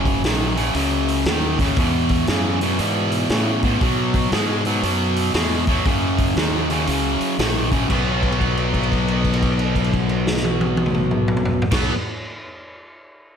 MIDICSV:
0, 0, Header, 1, 5, 480
1, 0, Start_track
1, 0, Key_signature, 5, "major"
1, 0, Tempo, 509771
1, 1672, Time_signature, 4, 2, 24, 8
1, 12587, End_track
2, 0, Start_track
2, 0, Title_t, "Distorted electric guitar"
2, 0, Program_c, 0, 30
2, 0, Note_on_c, 0, 42, 80
2, 0, Note_on_c, 0, 49, 87
2, 195, Note_off_c, 0, 42, 0
2, 198, Note_off_c, 0, 49, 0
2, 236, Note_on_c, 0, 42, 80
2, 238, Note_on_c, 0, 51, 77
2, 511, Note_off_c, 0, 42, 0
2, 512, Note_off_c, 0, 51, 0
2, 534, Note_on_c, 0, 42, 68
2, 539, Note_on_c, 0, 49, 91
2, 690, Note_off_c, 0, 42, 0
2, 693, Note_off_c, 0, 49, 0
2, 713, Note_on_c, 0, 42, 88
2, 719, Note_on_c, 0, 49, 80
2, 1158, Note_off_c, 0, 42, 0
2, 1162, Note_off_c, 0, 49, 0
2, 1193, Note_on_c, 0, 42, 59
2, 1204, Note_on_c, 0, 51, 83
2, 1471, Note_off_c, 0, 42, 0
2, 1477, Note_off_c, 0, 51, 0
2, 1505, Note_on_c, 0, 42, 55
2, 1509, Note_on_c, 0, 49, 77
2, 1657, Note_off_c, 0, 42, 0
2, 1659, Note_off_c, 0, 49, 0
2, 1674, Note_on_c, 0, 40, 75
2, 1679, Note_on_c, 0, 47, 98
2, 2120, Note_off_c, 0, 40, 0
2, 2123, Note_off_c, 0, 47, 0
2, 2156, Note_on_c, 0, 40, 84
2, 2160, Note_on_c, 0, 49, 95
2, 2434, Note_off_c, 0, 40, 0
2, 2436, Note_off_c, 0, 49, 0
2, 2468, Note_on_c, 0, 40, 78
2, 2476, Note_on_c, 0, 47, 83
2, 2620, Note_off_c, 0, 40, 0
2, 2624, Note_off_c, 0, 47, 0
2, 2632, Note_on_c, 0, 40, 83
2, 2638, Note_on_c, 0, 47, 100
2, 3080, Note_off_c, 0, 40, 0
2, 3083, Note_off_c, 0, 47, 0
2, 3112, Note_on_c, 0, 40, 64
2, 3117, Note_on_c, 0, 49, 80
2, 3393, Note_off_c, 0, 40, 0
2, 3395, Note_off_c, 0, 49, 0
2, 3429, Note_on_c, 0, 40, 63
2, 3437, Note_on_c, 0, 47, 69
2, 3581, Note_off_c, 0, 40, 0
2, 3585, Note_off_c, 0, 47, 0
2, 3596, Note_on_c, 0, 47, 79
2, 3604, Note_on_c, 0, 54, 92
2, 4043, Note_off_c, 0, 47, 0
2, 4047, Note_off_c, 0, 54, 0
2, 4072, Note_on_c, 0, 47, 68
2, 4078, Note_on_c, 0, 56, 97
2, 4353, Note_off_c, 0, 47, 0
2, 4357, Note_off_c, 0, 56, 0
2, 4388, Note_on_c, 0, 47, 75
2, 4390, Note_on_c, 0, 54, 78
2, 4537, Note_off_c, 0, 47, 0
2, 4542, Note_off_c, 0, 54, 0
2, 4548, Note_on_c, 0, 47, 81
2, 4555, Note_on_c, 0, 54, 98
2, 4999, Note_off_c, 0, 47, 0
2, 5003, Note_off_c, 0, 54, 0
2, 5029, Note_on_c, 0, 47, 66
2, 5031, Note_on_c, 0, 56, 72
2, 5313, Note_off_c, 0, 47, 0
2, 5313, Note_off_c, 0, 56, 0
2, 5347, Note_on_c, 0, 47, 65
2, 5348, Note_on_c, 0, 54, 65
2, 5501, Note_off_c, 0, 47, 0
2, 5502, Note_off_c, 0, 54, 0
2, 5515, Note_on_c, 0, 42, 92
2, 5518, Note_on_c, 0, 49, 93
2, 5963, Note_off_c, 0, 42, 0
2, 5964, Note_off_c, 0, 49, 0
2, 5998, Note_on_c, 0, 42, 71
2, 6004, Note_on_c, 0, 51, 99
2, 6277, Note_off_c, 0, 42, 0
2, 6280, Note_off_c, 0, 51, 0
2, 6308, Note_on_c, 0, 42, 76
2, 6314, Note_on_c, 0, 49, 87
2, 6462, Note_off_c, 0, 42, 0
2, 6464, Note_off_c, 0, 49, 0
2, 6477, Note_on_c, 0, 42, 76
2, 6481, Note_on_c, 0, 49, 85
2, 6923, Note_off_c, 0, 42, 0
2, 6925, Note_off_c, 0, 49, 0
2, 6956, Note_on_c, 0, 42, 68
2, 6963, Note_on_c, 0, 51, 70
2, 7235, Note_off_c, 0, 42, 0
2, 7239, Note_off_c, 0, 51, 0
2, 7265, Note_on_c, 0, 42, 55
2, 7271, Note_on_c, 0, 49, 71
2, 7420, Note_off_c, 0, 42, 0
2, 7423, Note_off_c, 0, 49, 0
2, 7432, Note_on_c, 0, 47, 92
2, 7450, Note_on_c, 0, 54, 100
2, 7468, Note_on_c, 0, 59, 102
2, 10962, Note_off_c, 0, 47, 0
2, 10971, Note_off_c, 0, 54, 0
2, 10980, Note_off_c, 0, 59, 0
2, 11028, Note_on_c, 0, 47, 84
2, 11047, Note_on_c, 0, 54, 95
2, 11068, Note_on_c, 0, 59, 107
2, 11214, Note_off_c, 0, 47, 0
2, 11224, Note_off_c, 0, 54, 0
2, 11234, Note_off_c, 0, 59, 0
2, 12587, End_track
3, 0, Start_track
3, 0, Title_t, "Fingered electric bass"
3, 0, Program_c, 1, 33
3, 0, Note_on_c, 1, 30, 83
3, 209, Note_off_c, 1, 30, 0
3, 225, Note_on_c, 1, 34, 85
3, 693, Note_off_c, 1, 34, 0
3, 703, Note_on_c, 1, 37, 77
3, 1173, Note_off_c, 1, 37, 0
3, 1183, Note_on_c, 1, 39, 92
3, 1654, Note_off_c, 1, 39, 0
3, 1666, Note_on_c, 1, 40, 91
3, 2136, Note_off_c, 1, 40, 0
3, 2149, Note_on_c, 1, 42, 96
3, 2618, Note_off_c, 1, 42, 0
3, 2631, Note_on_c, 1, 44, 90
3, 3099, Note_off_c, 1, 44, 0
3, 3108, Note_on_c, 1, 45, 93
3, 3578, Note_off_c, 1, 45, 0
3, 3590, Note_on_c, 1, 47, 89
3, 4059, Note_off_c, 1, 47, 0
3, 4071, Note_on_c, 1, 44, 103
3, 4540, Note_off_c, 1, 44, 0
3, 4547, Note_on_c, 1, 42, 92
3, 5019, Note_off_c, 1, 42, 0
3, 5032, Note_on_c, 1, 40, 90
3, 5501, Note_off_c, 1, 40, 0
3, 5514, Note_on_c, 1, 42, 77
3, 5982, Note_off_c, 1, 42, 0
3, 5993, Note_on_c, 1, 39, 107
3, 6461, Note_off_c, 1, 39, 0
3, 6475, Note_on_c, 1, 37, 90
3, 6765, Note_off_c, 1, 37, 0
3, 6957, Note_on_c, 1, 34, 100
3, 7423, Note_off_c, 1, 34, 0
3, 7439, Note_on_c, 1, 35, 95
3, 10927, Note_off_c, 1, 35, 0
3, 11033, Note_on_c, 1, 35, 87
3, 11204, Note_off_c, 1, 35, 0
3, 12587, End_track
4, 0, Start_track
4, 0, Title_t, "Muted fingered electric bass strokes"
4, 6785, Note_on_c, 9, 29, 37
4, 6879, Note_off_c, 9, 29, 0
4, 12587, End_track
5, 0, Start_track
5, 0, Title_t, "Drums"
5, 51, Note_on_c, 9, 36, 93
5, 56, Note_on_c, 9, 46, 57
5, 145, Note_off_c, 9, 36, 0
5, 150, Note_off_c, 9, 46, 0
5, 226, Note_on_c, 9, 46, 76
5, 233, Note_on_c, 9, 38, 91
5, 320, Note_off_c, 9, 46, 0
5, 327, Note_off_c, 9, 38, 0
5, 539, Note_on_c, 9, 46, 65
5, 633, Note_off_c, 9, 46, 0
5, 702, Note_on_c, 9, 46, 81
5, 796, Note_off_c, 9, 46, 0
5, 1021, Note_on_c, 9, 46, 57
5, 1115, Note_off_c, 9, 46, 0
5, 1181, Note_on_c, 9, 46, 72
5, 1189, Note_on_c, 9, 38, 119
5, 1275, Note_off_c, 9, 46, 0
5, 1283, Note_off_c, 9, 38, 0
5, 1497, Note_on_c, 9, 36, 82
5, 1498, Note_on_c, 9, 46, 62
5, 1505, Note_on_c, 9, 38, 33
5, 1591, Note_off_c, 9, 36, 0
5, 1592, Note_off_c, 9, 46, 0
5, 1599, Note_off_c, 9, 38, 0
5, 1661, Note_on_c, 9, 46, 76
5, 1666, Note_on_c, 9, 36, 117
5, 1755, Note_off_c, 9, 46, 0
5, 1761, Note_off_c, 9, 36, 0
5, 1969, Note_on_c, 9, 46, 59
5, 1976, Note_on_c, 9, 36, 83
5, 2063, Note_off_c, 9, 46, 0
5, 2070, Note_off_c, 9, 36, 0
5, 2140, Note_on_c, 9, 46, 62
5, 2148, Note_on_c, 9, 38, 101
5, 2234, Note_off_c, 9, 46, 0
5, 2242, Note_off_c, 9, 38, 0
5, 2458, Note_on_c, 9, 46, 64
5, 2552, Note_off_c, 9, 46, 0
5, 2625, Note_on_c, 9, 46, 68
5, 2719, Note_off_c, 9, 46, 0
5, 2934, Note_on_c, 9, 46, 59
5, 3028, Note_off_c, 9, 46, 0
5, 3102, Note_on_c, 9, 46, 73
5, 3110, Note_on_c, 9, 38, 107
5, 3196, Note_off_c, 9, 46, 0
5, 3204, Note_off_c, 9, 38, 0
5, 3414, Note_on_c, 9, 46, 57
5, 3418, Note_on_c, 9, 36, 83
5, 3508, Note_off_c, 9, 46, 0
5, 3512, Note_off_c, 9, 36, 0
5, 3588, Note_on_c, 9, 46, 74
5, 3590, Note_on_c, 9, 36, 119
5, 3682, Note_off_c, 9, 46, 0
5, 3684, Note_off_c, 9, 36, 0
5, 3896, Note_on_c, 9, 46, 61
5, 3900, Note_on_c, 9, 36, 91
5, 3990, Note_off_c, 9, 46, 0
5, 3994, Note_off_c, 9, 36, 0
5, 4068, Note_on_c, 9, 46, 71
5, 4076, Note_on_c, 9, 38, 96
5, 4162, Note_off_c, 9, 46, 0
5, 4170, Note_off_c, 9, 38, 0
5, 4377, Note_on_c, 9, 46, 59
5, 4471, Note_off_c, 9, 46, 0
5, 4551, Note_on_c, 9, 46, 77
5, 4645, Note_off_c, 9, 46, 0
5, 4862, Note_on_c, 9, 46, 65
5, 4956, Note_off_c, 9, 46, 0
5, 5029, Note_on_c, 9, 46, 80
5, 5037, Note_on_c, 9, 38, 115
5, 5123, Note_off_c, 9, 46, 0
5, 5131, Note_off_c, 9, 38, 0
5, 5338, Note_on_c, 9, 46, 62
5, 5343, Note_on_c, 9, 36, 87
5, 5433, Note_off_c, 9, 46, 0
5, 5437, Note_off_c, 9, 36, 0
5, 5512, Note_on_c, 9, 46, 72
5, 5514, Note_on_c, 9, 36, 104
5, 5606, Note_off_c, 9, 46, 0
5, 5608, Note_off_c, 9, 36, 0
5, 5822, Note_on_c, 9, 46, 65
5, 5825, Note_on_c, 9, 36, 93
5, 5916, Note_off_c, 9, 46, 0
5, 5919, Note_off_c, 9, 36, 0
5, 5994, Note_on_c, 9, 46, 79
5, 6002, Note_on_c, 9, 38, 93
5, 6088, Note_off_c, 9, 46, 0
5, 6096, Note_off_c, 9, 38, 0
5, 6307, Note_on_c, 9, 46, 63
5, 6401, Note_off_c, 9, 46, 0
5, 6472, Note_on_c, 9, 46, 81
5, 6566, Note_off_c, 9, 46, 0
5, 6785, Note_on_c, 9, 46, 53
5, 6880, Note_off_c, 9, 46, 0
5, 6959, Note_on_c, 9, 46, 69
5, 6967, Note_on_c, 9, 38, 116
5, 7054, Note_off_c, 9, 46, 0
5, 7061, Note_off_c, 9, 38, 0
5, 7264, Note_on_c, 9, 46, 55
5, 7266, Note_on_c, 9, 36, 74
5, 7358, Note_off_c, 9, 46, 0
5, 7360, Note_off_c, 9, 36, 0
5, 7437, Note_on_c, 9, 49, 81
5, 7438, Note_on_c, 9, 36, 100
5, 7531, Note_off_c, 9, 49, 0
5, 7532, Note_off_c, 9, 36, 0
5, 7747, Note_on_c, 9, 36, 63
5, 7747, Note_on_c, 9, 49, 40
5, 7837, Note_on_c, 9, 57, 41
5, 7841, Note_off_c, 9, 36, 0
5, 7841, Note_off_c, 9, 49, 0
5, 7918, Note_on_c, 9, 36, 58
5, 7921, Note_on_c, 9, 49, 40
5, 7931, Note_off_c, 9, 57, 0
5, 8012, Note_off_c, 9, 36, 0
5, 8015, Note_off_c, 9, 49, 0
5, 8074, Note_on_c, 9, 57, 47
5, 8168, Note_off_c, 9, 57, 0
5, 8229, Note_on_c, 9, 36, 71
5, 8233, Note_on_c, 9, 49, 45
5, 8317, Note_on_c, 9, 57, 47
5, 8323, Note_off_c, 9, 36, 0
5, 8327, Note_off_c, 9, 49, 0
5, 8399, Note_on_c, 9, 36, 62
5, 8407, Note_on_c, 9, 49, 42
5, 8411, Note_off_c, 9, 57, 0
5, 8493, Note_off_c, 9, 36, 0
5, 8501, Note_off_c, 9, 49, 0
5, 8553, Note_on_c, 9, 57, 48
5, 8647, Note_off_c, 9, 57, 0
5, 8705, Note_on_c, 9, 36, 61
5, 8706, Note_on_c, 9, 49, 47
5, 8790, Note_on_c, 9, 57, 50
5, 8799, Note_off_c, 9, 36, 0
5, 8800, Note_off_c, 9, 49, 0
5, 8875, Note_on_c, 9, 36, 60
5, 8875, Note_on_c, 9, 49, 51
5, 8884, Note_off_c, 9, 57, 0
5, 8969, Note_off_c, 9, 36, 0
5, 8969, Note_off_c, 9, 49, 0
5, 9030, Note_on_c, 9, 57, 57
5, 9124, Note_off_c, 9, 57, 0
5, 9185, Note_on_c, 9, 36, 64
5, 9187, Note_on_c, 9, 49, 48
5, 9268, Note_on_c, 9, 57, 45
5, 9279, Note_off_c, 9, 36, 0
5, 9281, Note_off_c, 9, 49, 0
5, 9355, Note_on_c, 9, 36, 71
5, 9355, Note_on_c, 9, 49, 54
5, 9363, Note_off_c, 9, 57, 0
5, 9449, Note_off_c, 9, 36, 0
5, 9449, Note_off_c, 9, 49, 0
5, 9504, Note_on_c, 9, 57, 49
5, 9598, Note_off_c, 9, 57, 0
5, 9670, Note_on_c, 9, 38, 103
5, 9761, Note_off_c, 9, 38, 0
5, 9761, Note_on_c, 9, 38, 95
5, 9836, Note_on_c, 9, 48, 87
5, 9855, Note_off_c, 9, 38, 0
5, 9930, Note_off_c, 9, 48, 0
5, 9989, Note_on_c, 9, 48, 92
5, 10083, Note_off_c, 9, 48, 0
5, 10142, Note_on_c, 9, 48, 100
5, 10225, Note_on_c, 9, 47, 94
5, 10237, Note_off_c, 9, 48, 0
5, 10305, Note_off_c, 9, 47, 0
5, 10305, Note_on_c, 9, 47, 95
5, 10399, Note_off_c, 9, 47, 0
5, 10461, Note_on_c, 9, 45, 81
5, 10555, Note_off_c, 9, 45, 0
5, 10620, Note_on_c, 9, 45, 109
5, 10703, Note_off_c, 9, 45, 0
5, 10703, Note_on_c, 9, 45, 101
5, 10784, Note_on_c, 9, 43, 100
5, 10797, Note_off_c, 9, 45, 0
5, 10878, Note_off_c, 9, 43, 0
5, 10940, Note_on_c, 9, 43, 117
5, 11031, Note_on_c, 9, 49, 117
5, 11034, Note_off_c, 9, 43, 0
5, 11036, Note_on_c, 9, 36, 119
5, 11039, Note_on_c, 9, 38, 111
5, 11125, Note_off_c, 9, 49, 0
5, 11130, Note_off_c, 9, 36, 0
5, 11133, Note_off_c, 9, 38, 0
5, 12587, End_track
0, 0, End_of_file